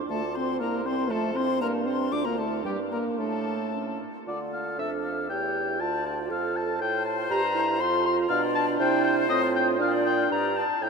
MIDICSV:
0, 0, Header, 1, 6, 480
1, 0, Start_track
1, 0, Key_signature, -1, "minor"
1, 0, Tempo, 505051
1, 97, Time_signature, 2, 2, 24, 8
1, 2018, Tempo, 533808
1, 4418, Tempo, 502934
1, 10242, End_track
2, 0, Start_track
2, 0, Title_t, "Flute"
2, 0, Program_c, 0, 73
2, 98, Note_on_c, 0, 81, 81
2, 337, Note_on_c, 0, 84, 81
2, 351, Note_off_c, 0, 81, 0
2, 567, Note_off_c, 0, 84, 0
2, 573, Note_on_c, 0, 82, 73
2, 800, Note_off_c, 0, 82, 0
2, 806, Note_on_c, 0, 84, 83
2, 1048, Note_on_c, 0, 81, 81
2, 1063, Note_off_c, 0, 84, 0
2, 1284, Note_on_c, 0, 84, 94
2, 1298, Note_off_c, 0, 81, 0
2, 1526, Note_off_c, 0, 84, 0
2, 1531, Note_on_c, 0, 82, 96
2, 1588, Note_off_c, 0, 82, 0
2, 1777, Note_on_c, 0, 84, 87
2, 2018, Note_on_c, 0, 86, 104
2, 2031, Note_off_c, 0, 84, 0
2, 2129, Note_on_c, 0, 82, 78
2, 2143, Note_off_c, 0, 86, 0
2, 2248, Note_on_c, 0, 81, 72
2, 2261, Note_off_c, 0, 82, 0
2, 2482, Note_off_c, 0, 81, 0
2, 2488, Note_on_c, 0, 79, 79
2, 2542, Note_off_c, 0, 79, 0
2, 2731, Note_on_c, 0, 82, 66
2, 2787, Note_off_c, 0, 82, 0
2, 2980, Note_on_c, 0, 81, 73
2, 3703, Note_off_c, 0, 81, 0
2, 3957, Note_on_c, 0, 69, 66
2, 4904, Note_on_c, 0, 73, 64
2, 4919, Note_off_c, 0, 69, 0
2, 5379, Note_off_c, 0, 73, 0
2, 5384, Note_on_c, 0, 74, 74
2, 5860, Note_on_c, 0, 69, 70
2, 5874, Note_off_c, 0, 74, 0
2, 6330, Note_on_c, 0, 72, 98
2, 6344, Note_off_c, 0, 69, 0
2, 7753, Note_on_c, 0, 74, 83
2, 7767, Note_off_c, 0, 72, 0
2, 8227, Note_off_c, 0, 74, 0
2, 8233, Note_on_c, 0, 72, 111
2, 8933, Note_off_c, 0, 72, 0
2, 9197, Note_on_c, 0, 74, 101
2, 9671, Note_off_c, 0, 74, 0
2, 9683, Note_on_c, 0, 74, 84
2, 9994, Note_off_c, 0, 74, 0
2, 10174, Note_on_c, 0, 73, 87
2, 10242, Note_off_c, 0, 73, 0
2, 10242, End_track
3, 0, Start_track
3, 0, Title_t, "Oboe"
3, 0, Program_c, 1, 68
3, 94, Note_on_c, 1, 69, 83
3, 325, Note_off_c, 1, 69, 0
3, 330, Note_on_c, 1, 72, 77
3, 560, Note_off_c, 1, 72, 0
3, 566, Note_on_c, 1, 70, 78
3, 819, Note_on_c, 1, 72, 86
3, 833, Note_off_c, 1, 70, 0
3, 1056, Note_on_c, 1, 69, 87
3, 1070, Note_off_c, 1, 72, 0
3, 1297, Note_on_c, 1, 72, 78
3, 1311, Note_off_c, 1, 69, 0
3, 1528, Note_off_c, 1, 72, 0
3, 1534, Note_on_c, 1, 70, 86
3, 1642, Note_off_c, 1, 70, 0
3, 1766, Note_on_c, 1, 72, 74
3, 1878, Note_off_c, 1, 72, 0
3, 2013, Note_on_c, 1, 74, 90
3, 2126, Note_off_c, 1, 74, 0
3, 2132, Note_on_c, 1, 70, 75
3, 2248, Note_off_c, 1, 70, 0
3, 2253, Note_on_c, 1, 69, 60
3, 2485, Note_off_c, 1, 69, 0
3, 2495, Note_on_c, 1, 67, 79
3, 2603, Note_off_c, 1, 67, 0
3, 2734, Note_on_c, 1, 70, 65
3, 2846, Note_off_c, 1, 70, 0
3, 2982, Note_on_c, 1, 69, 81
3, 3704, Note_off_c, 1, 69, 0
3, 3951, Note_on_c, 1, 74, 84
3, 4057, Note_off_c, 1, 74, 0
3, 4182, Note_on_c, 1, 77, 80
3, 4411, Note_off_c, 1, 77, 0
3, 4416, Note_on_c, 1, 76, 91
3, 4526, Note_off_c, 1, 76, 0
3, 4655, Note_on_c, 1, 77, 79
3, 4890, Note_off_c, 1, 77, 0
3, 4896, Note_on_c, 1, 79, 99
3, 5381, Note_on_c, 1, 81, 107
3, 5395, Note_off_c, 1, 79, 0
3, 5622, Note_off_c, 1, 81, 0
3, 5631, Note_on_c, 1, 81, 86
3, 5737, Note_off_c, 1, 81, 0
3, 5867, Note_on_c, 1, 77, 98
3, 6109, Note_on_c, 1, 81, 96
3, 6123, Note_off_c, 1, 77, 0
3, 6343, Note_off_c, 1, 81, 0
3, 6347, Note_on_c, 1, 79, 114
3, 6575, Note_off_c, 1, 79, 0
3, 6580, Note_on_c, 1, 81, 92
3, 6688, Note_off_c, 1, 81, 0
3, 6819, Note_on_c, 1, 82, 127
3, 7295, Note_on_c, 1, 84, 127
3, 7309, Note_off_c, 1, 82, 0
3, 7527, Note_off_c, 1, 84, 0
3, 7533, Note_on_c, 1, 84, 123
3, 7638, Note_off_c, 1, 84, 0
3, 7759, Note_on_c, 1, 77, 124
3, 7867, Note_off_c, 1, 77, 0
3, 8002, Note_on_c, 1, 81, 126
3, 8109, Note_off_c, 1, 81, 0
3, 8243, Note_on_c, 1, 79, 126
3, 8469, Note_off_c, 1, 79, 0
3, 8474, Note_on_c, 1, 79, 111
3, 8582, Note_off_c, 1, 79, 0
3, 8713, Note_on_c, 1, 75, 124
3, 8822, Note_off_c, 1, 75, 0
3, 8965, Note_on_c, 1, 79, 123
3, 9072, Note_off_c, 1, 79, 0
3, 9206, Note_on_c, 1, 77, 112
3, 9313, Note_off_c, 1, 77, 0
3, 9443, Note_on_c, 1, 79, 121
3, 9679, Note_off_c, 1, 79, 0
3, 9691, Note_on_c, 1, 82, 111
3, 9931, Note_on_c, 1, 81, 113
3, 9945, Note_off_c, 1, 82, 0
3, 10177, Note_on_c, 1, 79, 111
3, 10191, Note_off_c, 1, 81, 0
3, 10242, Note_off_c, 1, 79, 0
3, 10242, End_track
4, 0, Start_track
4, 0, Title_t, "Clarinet"
4, 0, Program_c, 2, 71
4, 98, Note_on_c, 2, 65, 71
4, 577, Note_on_c, 2, 64, 71
4, 591, Note_off_c, 2, 65, 0
4, 1046, Note_off_c, 2, 64, 0
4, 1052, Note_on_c, 2, 65, 70
4, 1159, Note_off_c, 2, 65, 0
4, 1290, Note_on_c, 2, 64, 70
4, 1397, Note_off_c, 2, 64, 0
4, 1528, Note_on_c, 2, 62, 79
4, 2009, Note_on_c, 2, 65, 72
4, 2023, Note_off_c, 2, 62, 0
4, 2242, Note_on_c, 2, 64, 69
4, 2255, Note_off_c, 2, 65, 0
4, 2477, Note_on_c, 2, 62, 71
4, 2490, Note_off_c, 2, 64, 0
4, 2965, Note_off_c, 2, 62, 0
4, 2970, Note_on_c, 2, 62, 61
4, 3460, Note_off_c, 2, 62, 0
4, 3465, Note_on_c, 2, 61, 58
4, 3708, Note_off_c, 2, 61, 0
4, 3944, Note_on_c, 2, 65, 65
4, 4380, Note_off_c, 2, 65, 0
4, 4411, Note_on_c, 2, 62, 68
4, 4888, Note_off_c, 2, 62, 0
4, 4898, Note_on_c, 2, 64, 65
4, 5373, Note_on_c, 2, 65, 73
4, 5388, Note_off_c, 2, 64, 0
4, 6805, Note_off_c, 2, 65, 0
4, 6811, Note_on_c, 2, 67, 89
4, 6919, Note_off_c, 2, 67, 0
4, 7042, Note_on_c, 2, 64, 89
4, 7151, Note_off_c, 2, 64, 0
4, 7285, Note_on_c, 2, 65, 80
4, 8217, Note_off_c, 2, 65, 0
4, 8232, Note_on_c, 2, 64, 100
4, 8708, Note_on_c, 2, 65, 91
4, 8722, Note_off_c, 2, 64, 0
4, 9668, Note_off_c, 2, 65, 0
4, 9673, Note_on_c, 2, 67, 80
4, 9989, Note_off_c, 2, 67, 0
4, 10165, Note_on_c, 2, 64, 76
4, 10242, Note_off_c, 2, 64, 0
4, 10242, End_track
5, 0, Start_track
5, 0, Title_t, "French horn"
5, 0, Program_c, 3, 60
5, 95, Note_on_c, 3, 57, 92
5, 203, Note_off_c, 3, 57, 0
5, 335, Note_on_c, 3, 60, 98
5, 571, Note_on_c, 3, 58, 89
5, 585, Note_off_c, 3, 60, 0
5, 802, Note_off_c, 3, 58, 0
5, 808, Note_on_c, 3, 60, 107
5, 1044, Note_on_c, 3, 57, 106
5, 1059, Note_off_c, 3, 60, 0
5, 1280, Note_off_c, 3, 57, 0
5, 1286, Note_on_c, 3, 60, 101
5, 1531, Note_on_c, 3, 58, 96
5, 1545, Note_off_c, 3, 60, 0
5, 1767, Note_on_c, 3, 60, 105
5, 1782, Note_off_c, 3, 58, 0
5, 2013, Note_on_c, 3, 62, 106
5, 2027, Note_off_c, 3, 60, 0
5, 2136, Note_on_c, 3, 58, 96
5, 2149, Note_off_c, 3, 62, 0
5, 2252, Note_on_c, 3, 57, 83
5, 2266, Note_off_c, 3, 58, 0
5, 2483, Note_off_c, 3, 57, 0
5, 2488, Note_on_c, 3, 55, 85
5, 2597, Note_off_c, 3, 55, 0
5, 2730, Note_on_c, 3, 58, 95
5, 2975, Note_on_c, 3, 57, 90
5, 2988, Note_off_c, 3, 58, 0
5, 3715, Note_off_c, 3, 57, 0
5, 3954, Note_on_c, 3, 65, 76
5, 4385, Note_off_c, 3, 65, 0
5, 4411, Note_on_c, 3, 69, 78
5, 4889, Note_off_c, 3, 69, 0
5, 4899, Note_on_c, 3, 67, 75
5, 5375, Note_on_c, 3, 65, 77
5, 5389, Note_off_c, 3, 67, 0
5, 5855, Note_on_c, 3, 69, 93
5, 5869, Note_off_c, 3, 65, 0
5, 6810, Note_off_c, 3, 69, 0
5, 6816, Note_on_c, 3, 67, 92
5, 6923, Note_off_c, 3, 67, 0
5, 7053, Note_on_c, 3, 64, 92
5, 7292, Note_on_c, 3, 65, 109
5, 7307, Note_off_c, 3, 64, 0
5, 7760, Note_off_c, 3, 65, 0
5, 7766, Note_on_c, 3, 62, 120
5, 8696, Note_off_c, 3, 62, 0
5, 8713, Note_on_c, 3, 60, 106
5, 9187, Note_off_c, 3, 60, 0
5, 9192, Note_on_c, 3, 62, 103
5, 9886, Note_off_c, 3, 62, 0
5, 10166, Note_on_c, 3, 64, 79
5, 10242, Note_off_c, 3, 64, 0
5, 10242, End_track
6, 0, Start_track
6, 0, Title_t, "Bassoon"
6, 0, Program_c, 4, 70
6, 86, Note_on_c, 4, 38, 70
6, 567, Note_on_c, 4, 36, 84
6, 582, Note_off_c, 4, 38, 0
6, 1046, Note_on_c, 4, 41, 73
6, 1060, Note_off_c, 4, 36, 0
6, 1524, Note_on_c, 4, 43, 81
6, 1538, Note_off_c, 4, 41, 0
6, 2008, Note_off_c, 4, 43, 0
6, 2014, Note_on_c, 4, 38, 71
6, 2482, Note_on_c, 4, 43, 82
6, 2495, Note_off_c, 4, 38, 0
6, 2828, Note_off_c, 4, 43, 0
6, 2974, Note_on_c, 4, 45, 68
6, 3700, Note_off_c, 4, 45, 0
6, 3953, Note_on_c, 4, 50, 68
6, 4419, Note_on_c, 4, 41, 70
6, 4433, Note_off_c, 4, 50, 0
6, 4906, Note_on_c, 4, 40, 65
6, 4920, Note_off_c, 4, 41, 0
6, 5380, Note_on_c, 4, 38, 75
6, 5394, Note_off_c, 4, 40, 0
6, 5855, Note_off_c, 4, 38, 0
6, 5860, Note_on_c, 4, 41, 79
6, 6341, Note_on_c, 4, 45, 91
6, 6355, Note_off_c, 4, 41, 0
6, 6805, Note_off_c, 4, 45, 0
6, 6811, Note_on_c, 4, 43, 88
6, 7282, Note_on_c, 4, 41, 102
6, 7296, Note_off_c, 4, 43, 0
6, 7753, Note_off_c, 4, 41, 0
6, 7759, Note_on_c, 4, 47, 95
6, 8227, Note_off_c, 4, 47, 0
6, 8234, Note_on_c, 4, 48, 104
6, 8713, Note_on_c, 4, 45, 101
6, 8728, Note_off_c, 4, 48, 0
6, 9197, Note_on_c, 4, 46, 107
6, 9211, Note_off_c, 4, 45, 0
6, 9674, Note_off_c, 4, 46, 0
6, 9680, Note_on_c, 4, 43, 86
6, 9992, Note_off_c, 4, 43, 0
6, 10164, Note_on_c, 4, 45, 82
6, 10242, Note_off_c, 4, 45, 0
6, 10242, End_track
0, 0, End_of_file